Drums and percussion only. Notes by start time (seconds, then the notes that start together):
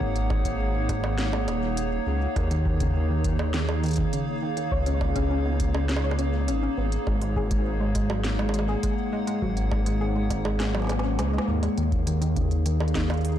0.01 kick
0.16 closed hi-hat
0.30 kick, high bongo
0.45 kick, closed hi-hat
0.89 kick, closed hi-hat, high bongo
1.04 high bongo
1.18 snare, closed hi-hat
1.33 high bongo
1.48 closed hi-hat, high bongo
1.77 closed hi-hat
2.36 kick, closed hi-hat, high bongo
2.51 closed hi-hat
2.66 kick
2.80 kick, closed hi-hat
3.24 kick, closed hi-hat
3.39 high bongo
3.54 snare, closed hi-hat
3.69 high bongo
3.83 closed hi-hat
3.86 closed hi-hat
3.88 closed hi-hat
3.91 closed hi-hat
3.93 closed hi-hat
3.96 kick, closed hi-hat
4.13 closed hi-hat
4.57 closed hi-hat
4.72 kick
4.86 closed hi-hat
5.01 kick, high bongo
5.16 kick, closed hi-hat
5.60 kick, closed hi-hat
5.75 high bongo
5.89 snare, closed hi-hat
5.97 high bongo
6.11 high bongo
6.19 closed hi-hat
6.48 closed hi-hat
6.92 closed hi-hat
7.07 kick, high bongo
7.22 closed hi-hat
7.36 kick
7.51 kick, closed hi-hat
7.95 kick, closed hi-hat
8.10 high bongo
8.24 snare, closed hi-hat
8.39 high bongo
8.49 high bongo
8.54 closed hi-hat
8.59 high bongo
8.83 kick, closed hi-hat
9.27 closed hi-hat
9.42 kick
9.57 closed hi-hat
9.71 kick, high bongo
9.86 closed hi-hat
10.30 kick, closed hi-hat, high bongo
10.45 high bongo
10.60 snare, closed hi-hat
10.75 high bongo
10.80 snare
10.82 snare
10.84 snare
10.87 snare
10.89 snare, closed hi-hat, high bongo
10.92 snare
10.99 snare
11.19 snare, closed hi-hat
11.38 snare
11.63 closed hi-hat, high bongo
11.78 closed hi-hat
11.92 kick, closed hi-hat
12.07 closed hi-hat
12.22 closed hi-hat
12.36 kick, closed hi-hat
12.51 closed hi-hat
12.66 closed hi-hat
12.80 high bongo
12.88 closed hi-hat
12.95 kick, snare, closed hi-hat
13.10 closed hi-hat, high bongo
13.14 closed hi-hat
13.17 closed hi-hat
13.21 closed hi-hat
13.25 closed hi-hat
13.28 closed hi-hat
13.32 closed hi-hat
13.36 closed hi-hat